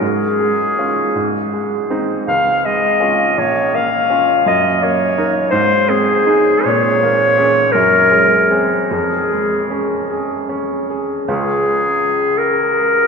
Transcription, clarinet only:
0.02 1.86 G#4 medium
2.28 2.67 F5 medium
2.65 3.40 D#5 medium
3.38 3.76 C#5 medium
3.75 4.47 F5 medium
4.47 4.85 D#5 medium
4.83 5.50 C#5 medium
5.51 5.91 C5 medium
5.89 6.66 G#4 medium
6.65 7.74 C#5 medium
7.72 8.58 A#4 medium
8.90 10.05 G#4 soft
11.28 12.39 G#4 medium
12.38 13.07 A#4 medium

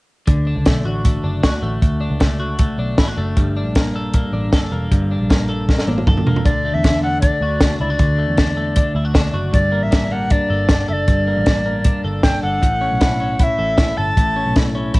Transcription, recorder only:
6.45 6.76 D5 medium
6.74 7.02 E5 medium
7.03 7.21 F#5 medium
7.21 7.76 D5 medium
7.81 8.92 D5 medium
9.53 9.84 D5 medium
9.83 10.13 E5 medium
10.12 10.33 F#5 medium
10.31 10.89 D5 medium
10.89 12.01 D5 medium
10.89 10.94 E5 medium
12.23 12.41 G5 medium
12.43 13.39 F#5 medium
13.39 13.45 F#5 medium
13.44 13.99 E5 medium
13.97 14.56 A5 medium

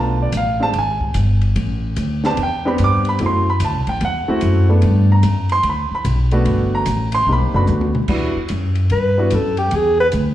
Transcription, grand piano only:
0.00 0.30 A3 medium
0.00 0.30 B3 medium
0.00 0.30 D4 medium
0.00 0.31 F4 medium
0.00 0.21 A5 medium
0.22 0.34 D5 medium
0.37 0.61 F5 medium
0.60 0.73 G#3 medium
0.60 0.73 C4 medium
0.60 0.73 D4 medium
0.60 0.73 G4 medium
0.60 0.75 A5 loud
0.79 1.15 G#5 medium
2.24 2.37 B3 medium
2.24 2.37 C4 medium
2.24 2.37 D4 medium
2.24 2.37 G4 medium
2.24 2.39 A5 loud
2.43 2.67 G5 medium
2.65 3.17 B3 medium
2.65 3.18 C4 medium
2.65 3.18 D4 medium
2.65 3.18 G4 medium
2.65 2.80 B5 medium
2.84 3.08 D6 loud
3.09 3.21 B5 loud
3.20 3.44 A3 medium
3.20 3.44 C4 soft
3.20 3.44 E4 medium
3.20 3.45 F#4 medium
3.26 3.49 C6 medium
3.50 3.62 B5 medium
3.65 3.89 A5 medium
3.89 4.02 G5 medium
4.05 4.67 F#5 medium
4.28 4.66 A3 medium
4.28 4.66 C4 medium
4.28 4.67 E4 medium
4.28 4.67 F#4 medium
4.69 5.21 A3 medium
4.69 5.21 B3 medium
4.69 5.22 D4 medium
4.69 5.22 A4 medium
5.12 5.49 A#5 medium
5.52 5.65 C6 loud
5.69 5.93 B5 medium
5.95 6.07 B5 medium
6.32 6.84 A3 medium
6.32 6.84 B3 medium
6.32 6.85 D4 medium
6.32 6.85 F#4 medium
6.75 7.12 A#5 medium
7.15 7.28 C6 loud
7.28 7.52 A#3 medium
7.28 7.52 C4 soft
7.28 7.52 D#4 medium
7.28 7.52 G4 medium
7.32 7.54 B5 loud
7.54 7.90 A3 medium
7.54 7.90 B3 medium
7.54 7.90 D4 medium
7.54 7.90 F#4 medium
7.54 7.64 B5 medium
8.09 8.33 G3 medium
8.09 8.33 B3 medium
8.09 8.34 D4 medium
8.09 8.34 E4 medium
8.09 8.34 F#4 medium
9.17 9.30 G3 medium
9.17 9.30 B3 medium
9.17 9.31 D4 medium
9.17 9.31 E4 medium
9.17 9.31 F#4 medium

